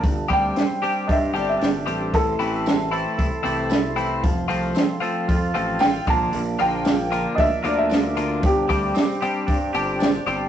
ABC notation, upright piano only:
X:1
M:4/4
L:1/16
Q:1/4=114
K:Gdor
V:1 name="Upright piano"
a2 g6 [^de]2 =d e4- e | A12 z4 | z12 g2 a2- | a2 g6 [^de]2 =d e4- e |
G12 z4 |]